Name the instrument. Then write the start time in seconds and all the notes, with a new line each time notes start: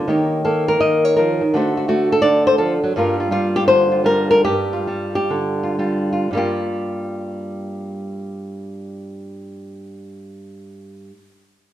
nylon-string guitar
0.08 D#3 A#3 D#4 G4 C#5
0.45 A#3 A4
0.68 A#4
0.80 D#3 D#5
1.05 C#5
1.17 F3 A#4
1.41 D#3
1.54 D3 A3 D4 F#4 C5
1.77 F#4
1.88 A3 F#4
2.12 A4
2.22 D3 D5
2.47 C5
2.58 F3 A4
2.84 F#3
2.96 G2 G3 A#3 F4 A#4
3.20 F4
3.31 G3 F4
3.56 G4
3.67 D3 C5
3.92 F4
4.04 G3 A#4
4.31 A#4
4.45 G2 G4
4.73 F4
4.87 G3
5.15 G4
5.30 D3
5.63 F4
5.79 G3 F4
6.13 F4
6.31 G2 G3
6.35 A#3 F4 G4